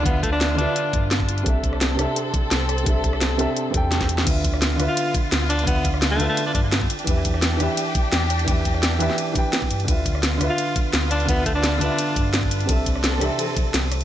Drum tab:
CC |----------------|----------------|----------------|x---------------|
RD |----------------|----------------|----------------|b-b-b-b-b-b-b-b-|
HH |x-x-x-x-x-x-x-xx|x-x-x-x-x-x-x-xx|x-x-x-x-x-x-xxxx|x-x-x-x-x-x-x-xx|
SD |---ro-------o---|---ro-r-----o-r-|---ro-------oo-o|---ro-r-----o-r-|
BD |o-o-------o--o--|o-o-------o-----|o-o-------o--o--|o-o-------o-----|

CC |----------------|----------------|----------------|----------------|
RD |b-b-b-b-b-b-b-b-|b-b-b-b-b-b-b-b-|b-b-b-b-b-b-b-b-|b-b-b-b-b-b-b-b-|
HH |x-x-x-x-x-x-x-xx|x-x-x-x-x-x-x-xx|x-x-x-x-x-x-x-xx|x-x-x-x-x-x-x-xx|
SD |---ro-------o---|---ro-r-----o-r-|---ro--o----o---|---ro-r-----o-r-|
BD |o-o-------o--o--|o-o-------o-----|o-o-------o--o--|o-o-------o-----|

CC |----------------|----------------|
RD |b-b-b-b-b-b-b-b-|b-b-b-b-b-b-b-b-|
HH |x-x-x-x-x-x-x-xx|x-x-x-x-x-x-x-xx|
SD |---ro-------o---|---ro-r-----o-r-|
BD |o-o-------o--o--|o-o-------o-----|